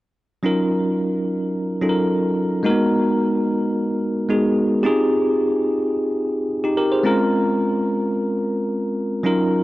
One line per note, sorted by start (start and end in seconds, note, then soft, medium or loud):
0.43 1.78 F#3 medium
0.43 1.79 C#4 medium
0.43 1.79 D#4 medium
0.43 1.79 F4 medium
0.43 1.80 A#4 medium
1.81 2.64 F#3 medium
1.81 2.64 C#4 soft
1.81 2.63 D#4 soft
1.81 2.64 F4 soft
1.81 1.89 A4 soft
1.89 2.65 A#4 medium
2.63 4.25 G#3 medium
2.63 2.71 A#3 soft
2.63 4.26 D#4 medium
2.63 4.26 F#4 medium
2.63 4.27 A#4 medium
2.70 4.28 B3 medium
4.29 4.84 G#3 medium
4.29 4.84 B3 soft
4.29 4.83 D#4 medium
4.29 4.85 F#4 medium
4.29 4.85 G#4 medium
4.83 7.00 C4 medium
4.83 6.46 D#4 medium
4.83 6.47 F4 medium
4.83 6.63 G4 medium
4.83 6.47 G#4 medium
6.64 6.77 D#4 medium
6.64 6.76 G4 medium
6.77 6.91 G4 medium
6.77 6.91 A#4 medium
6.92 7.18 G#4 medium
6.92 7.18 C5 medium
7.03 9.20 G#3 medium
7.03 9.20 C4 medium
7.03 9.21 C#4 medium
7.03 9.21 F4 medium
7.03 9.22 A#4 medium
9.23 9.63 F#3 medium
9.23 9.63 C#4 medium
9.23 9.63 D#4 medium
9.23 9.63 F4 medium
9.23 9.63 A#4 medium